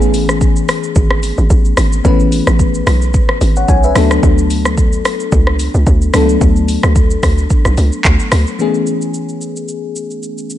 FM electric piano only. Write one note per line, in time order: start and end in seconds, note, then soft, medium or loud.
0.00 2.01 E3 medium
0.00 2.01 A3 medium
0.00 2.01 B3 medium
0.00 2.02 C#4 medium
0.00 2.02 G#4 medium
2.04 3.38 E3 medium
2.04 3.38 A3 medium
2.04 3.39 B3 medium
2.04 3.39 C#4 medium
2.04 3.39 B4 medium
3.57 3.68 C#5 medium
3.57 3.68 F#5 medium
3.69 3.83 C#5 medium
3.69 3.83 G#5 medium
3.84 4.10 B4 medium
3.84 4.10 E5 medium
3.95 6.10 F#3 medium
3.95 6.10 A3 medium
3.95 6.10 B3 medium
3.95 6.11 D4 medium
3.95 6.11 A4 medium
6.13 8.28 F#3 medium
6.13 8.28 A3 medium
6.13 8.28 B3 medium
6.13 8.29 D4 medium
6.13 8.29 A4 medium
8.59 10.58 E3 medium
8.59 10.58 A3 medium
8.59 10.58 B3 medium
8.59 10.58 C#4 medium
8.59 10.58 G#4 medium